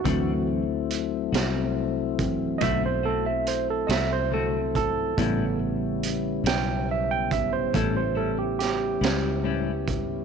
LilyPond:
<<
  \new Staff \with { instrumentName = "Tine electric piano" } { \time 12/8 \key a \mixolydian \tempo 4. = 47 fis'8 r2 r8 <dis'' e''>16 c''16 a'16 e''16 c''16 a'16 <dis'' e''>16 c''16 a'8 a'8~ | a'8 r4 g''8 e''16 g''16 e''16 c''16 a'16 c''16 a'16 g'16 g'2 | }
  \new Staff \with { instrumentName = "Tine electric piano" } { \clef bass \time 12/8 \key a \mixolydian <e fis c'>8 r2 <e fis c'>8 r2. | <cis g b>1. | }
  \new Staff \with { instrumentName = "Clean electric guitar" } { \time 12/8 \key a \mixolydian <d a c' fis'>8 r4 <a c' fis'>8 r4 <d a c' fis'>8 <a c' fis'>8 r8 <a c' fis'>8 <d a c' fis'>8 r8 | <a, g cis' e'>8 r4 <g cis' e'>8 r4 <a, g cis' e'>8 <g cis' e'>8 r8 <g cis' e'>8 <a, g cis' e'>8 r8 | }
  \new Staff \with { instrumentName = "Tonewheel organ" } { \time 12/8 \key a \mixolydian <fis a c' e'>1. | <g b cis' e'>1. | }
  \new Staff \with { instrumentName = "Fingered electric bass" } { \clef bass \time 12/8 \key a \mixolydian d,4. c,4. b,,4. c,4. | a,,4. b,,4. a,,4. cis,4. | }
  \new DrumStaff \with { instrumentName = "Drums" } \drummode { \time 12/8 <hh bd>4 hh8 <hh sn>4 <hh bd>8 <hh bd>4 hh8 <hh sn>4 <hh bd>8 | <hh bd>4 hh8 <hh sn>4 <hh bd>8 <hh bd>4 <hh sn>8 <hh sn>4 <hh bd>8 | }
>>